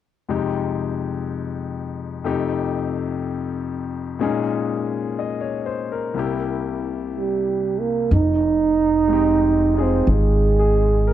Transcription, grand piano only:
0.29 2.23 F2 soft
0.29 2.24 C3 soft
0.29 2.25 G#3 soft
0.29 2.24 D#4 soft
0.29 2.25 G4 soft
2.24 4.20 F2 soft
2.24 4.21 C3 soft
2.24 4.20 A3 soft
2.24 4.19 D#4 soft
2.24 4.21 G4 medium
4.19 6.15 A#2 soft
4.19 6.16 G#3 soft
4.19 6.15 A#3 soft
4.19 6.16 C#4 soft
4.19 6.16 D#4 soft
4.19 6.16 G#4 soft
5.19 5.65 D#5 soft
5.41 5.84 C#5 soft
5.66 5.96 C5 soft
5.92 6.26 A#4 soft
6.14 8.11 C2 soft
6.14 8.12 C3 soft
6.14 8.12 A#3 soft
6.14 8.13 E4 soft
6.19 8.14 G4 soft
9.08 11.13 G#3 soft
9.08 11.13 C4 soft
9.08 9.73 D#4 soft
9.12 11.13 G4 soft
9.75 11.13 D#4 soft
9.75 11.13 F4 soft
9.75 10.58 G#4 soft
10.59 11.13 G#4 soft
11.07 11.13 A#4 soft

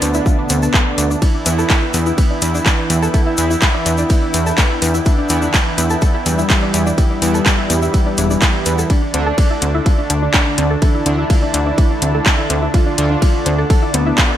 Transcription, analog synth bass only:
0.02 0.20 D2 loud
0.50 0.68 D2 medium
0.98 1.16 D2 loud
1.46 1.64 E2 loud
1.94 2.12 E2 loud
2.42 2.60 E2 medium
2.90 3.08 E2 loud
3.38 3.56 E2 loud
3.86 4.04 E2 loud
4.34 4.52 E2 medium
4.82 5.00 E2 loud
5.30 5.48 E2 loud
5.78 5.96 E2 loud
6.26 6.44 E2 loud
6.74 6.92 E2 medium
7.22 7.40 E2 loud
7.70 7.88 E2 loud
8.18 8.36 E1 loud
8.66 8.84 E2 medium
9.14 9.32 D2 loud
9.62 9.80 D2 loud
10.10 10.28 D2 medium
10.58 10.76 D2 loud
11.06 11.24 D2 loud
11.54 11.72 D2 loud
12.02 12.20 D2 medium
12.50 12.68 D2 loud
12.98 13.16 D2 loud
13.46 13.64 D2 loud
13.94 14.12 D2 loud

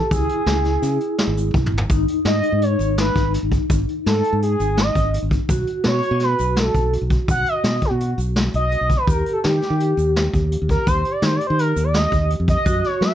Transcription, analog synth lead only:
0.00 0.11 A4 medium
0.12 1.51 G#4 medium
2.27 2.64 D#5 loud
2.63 2.98 C#5 loud
3.00 3.33 B4 medium
4.07 4.40 A4 medium
4.43 4.82 G#4 medium
4.80 5.15 D#5 loud
5.88 6.25 C#5 loud
6.23 6.61 B4 loud
6.59 6.94 A4 medium
7.31 7.50 F#5 loud
7.48 7.86 D#5 loud
7.85 8.20 F#4 medium
8.55 8.98 D#5 loud
8.97 9.11 B4 medium
9.10 9.33 A#4 loud
9.33 9.38 A4 medium
9.46 10.31 G4 medium
10.70 10.89 A#4 medium
10.87 11.13 C5 loud
11.11 11.25 D5 loud
11.23 11.37 C5 medium
11.36 11.46 D5 medium
11.47 11.60 C5 medium
11.59 11.85 A#4 medium
11.84 11.96 D5 medium
11.95 12.31 D#5 loud
12.50 12.87 D#5 loud
12.85 13.06 C#5 loud
13.04 13.14 E5 medium

